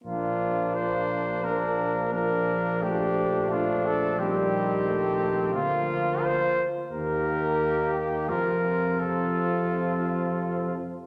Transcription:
<<
  \new Staff \with { instrumentName = "Trumpet" } { \time 4/4 \key bes \major \tempo 4 = 87 f'4 c''4 bes'4 bes'4 | g'4 f'8 a'8 g'2 | f'4 c''8 r8 bes'4. g'8 | bes'4 a'2~ a'8 r8 | }
  \new Staff \with { instrumentName = "Trumpet" } { \time 4/4 \key bes \major d'2 d'4 d'4 | d'4 d'4 c'2 | f'4. r8 g'2 | f'4 f'2~ f'8 r8 | }
  \new Staff \with { instrumentName = "French horn" } { \time 4/4 \key bes \major bes2 bes4 bes4 | a4 a4 g4 a4 | bes4. r8 bes2 | f4 f2~ f8 r8 | }
  \new Staff \with { instrumentName = "Trombone" } { \clef bass \time 4/4 \key bes \major f2 f4 f4 | f4 f4 ees2 | f4. r8 ees2 | c4 c2~ c8 r8 | }
  \new Staff \with { instrumentName = "Tuba" } { \clef bass \time 4/4 \key bes \major bes,,1~ | bes,,1 | d,4. r8 ees,2 | f,2.~ f,8 r8 | }
>>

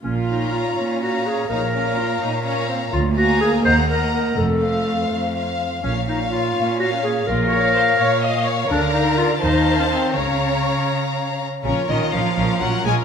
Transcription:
<<
  \new Staff \with { instrumentName = "Violin section" } { \time 6/8 \key bes \minor \tempo 4. = 83 r8 bes''4. bes''4 | bes''8 bes''4. bes''4 | r8 bes''4 bes''8 bes''4 | r8 f''4. f''4 |
f''8 f''4. f''4 | r8 f''4. f''4 | bes''4. a''4. | bes''2~ bes''8 r8 |
des''8 ees''8 f''4 ges''8 aes''8 | }
  \new Staff \with { instrumentName = "Violin section" } { \time 6/8 \key bes \minor r8 <des'' f''>4. <des'' f''>4 | <des'' f''>8 <des'' f''>4. <des'' f''>4 | r8 <f'' aes''>4 <ees'' ges''>8 <ees'' ges''>4 | r8 <c'' f''>4. <c'' f''>4 |
<des'' f''>8 <des'' f''>4. <des'' f''>4 | r8 <des'' f''>4. <des'' f''>4 | <d'' f''>4. <c'' f''>4. | <des'' f''>2~ <des'' f''>8 r8 |
<bes' bes''>8 <bes' bes''>8 <bes' bes''>8 <bes' bes''>8 <bes' bes''>8 <bes' bes''>8 | }
  \new Staff \with { instrumentName = "Clarinet" } { \time 6/8 \key bes \minor des'8 ees'8 f'4 ges'8 aes'8 | bes'2~ bes'8 r8 | f'8 ges'8 aes'8 c''8 bes'8 bes'8 | a'4. r4. |
des'8 ees'8 f'4 ges'8 aes'8 | bes'2~ bes'8 r8 | d'8 ees'8 f'8 ees'8. des'16 c'8 | des'2~ des'8 r8 |
r2. | }
  \new Staff \with { instrumentName = "Viola section" } { \time 6/8 \key bes \minor f'4. des'4. | ees'8 des'8 f'8 ees'8 des'8 c'8 | bes2. | a2~ a16 r8. |
r4. des'4. | f'8 des''8 c''8 des''8 ees''8 des''8 | bes'4. c''4. | des''2~ des''16 r8. |
<des' f'>8 <des' f'>8 <des' f'>8 <des' f'>8 <des' f'>8 <des' f'>8 | }
  \new Staff \with { instrumentName = "Cello section" } { \clef bass \time 6/8 \key bes \minor bes,4. bes,4. | bes,4. bes,4. | d,4. ees,4. | f,4. f,4. |
bes,4. bes,4. | bes,4. bes,4. | d4. ees4. | des2~ des8 r8 |
des8 ees8 f4 ges8 aes8 | }
  \new Staff \with { instrumentName = "Double bass section" } { \clef bass \time 6/8 \key bes \minor bes,,4 r2 | bes,,4 r2 | d,4 r8 ees,4 r8 | f,,4 r2 |
bes,,4 r2 | bes,,4 r2 | d,4 r8 ees,4 r8 | des,4 r2 |
bes,,8 bes,,8 bes,,8 bes,,8 bes,,8 bes,,8 | }
>>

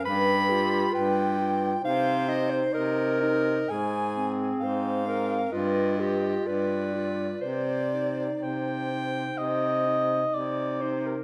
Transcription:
<<
  \new Staff \with { instrumentName = "Soprano saxophone" } { \time 4/4 \key c \minor \tempo 4 = 64 b''4 g''4 f''8 ees''16 c''16 ees''8 ees''8 | aes''8. r16 f''4 ees''4 d''4 | d''4 c''2 r4 | }
  \new Staff \with { instrumentName = "Alto saxophone" } { \time 4/4 \key c \minor b'8 g'8 b'8 r8 c''4 bes'4 | aes'4 c''8 bes'8 b'8 g'8 b'4 | c''4 g''4 ees''4 d''8 c''16 bes'16 | }
  \new Staff \with { instrumentName = "Clarinet" } { \time 4/4 \key c \minor r8 f'4 f'8 ees'8 ees'4 ees'8 | r8 c'4 c'8 f'8 f'4 f'8 | r8 ees'4 ees'4 ees'4 ees'8 | }
  \new Staff \with { instrumentName = "Baritone saxophone" } { \clef bass \time 4/4 \key c \minor g,4 g,4 c4 c4 | aes,4 aes,4 g,4 g,4 | c4 c4 c4 c4 | }
>>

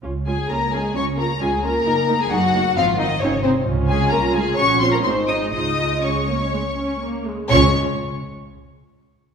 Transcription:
<<
  \new Staff \with { instrumentName = "Violin section" } { \time 4/4 \key des \major \tempo 4 = 128 r8 aes''8 bes''8 aes''8 des'''8 bes''8 aes''8 bes''8~ | bes''8. aes''16 ges''4 f''8 ees''8 des''8 c''8 | r8 aes''8 bes''8 aes''8 des'''8 c'''16 bes''16 c'''8 ees'''8 | ees'''4 des'''2 r4 |
des'''8 r2. r8 | }
  \new Staff \with { instrumentName = "Violin section" } { \time 4/4 \key des \major r8 aes'8 bes'8 aes'8 des''8 bes'8 aes'8 bes'8~ | bes'8. aes'16 ges'4 f'8 ees'8 des'8 c'8 | r8 aes'8 bes'8 aes'8 des''8 c''16 bes'16 c''8 ees''8 | ees''4 des''2 r4 |
des''8 r2. r8 | }
  \new Staff \with { instrumentName = "Viola section" } { \time 4/4 \key des \major << { f'8 f'8 f'8 f'8 f'8 f'8 f'8 f'8 | ees'8 ees'8 ees'8 ees'8 ees'8 ees'8 ees'8 ees'8 | f'2 ges'8 f'8 ees'4 | f'4 aes8 bes8 aes8 des'8 bes8 aes8 |
f'8 r2. r8 | } \\ { des'8 des'8 des'8 des'8 des'8 des'8 des'8 des'8 | bes8 bes8 bes8 bes8 c'8 c'8 c'8 c'8 | des'2 des'4 aes4 | aes4 r2. |
aes8 r2. r8 | } >> }
  \new Staff \with { instrumentName = "Cello section" } { \time 4/4 \key des \major r8 aes8 bes8 aes8 des'8 bes8 aes8 bes8~ | bes8. aes16 ges4 f8 ees8 des8 c8 | r8 aes8 bes8 aes8 des'8 c'16 bes16 c'8 ees'8 | ees'4 des'2 r4 |
des'8 r2. r8 | }
  \new Staff \with { instrumentName = "Double bass section" } { \clef bass \time 4/4 \key des \major des,4 des,4 des,4 des,4 | ges,,4 ges,,4 aes,,4 aes,,4 | des,4 c,4 bes,,4 aes,,4 | des,2.~ des,8 r8 |
des,8 r2. r8 | }
>>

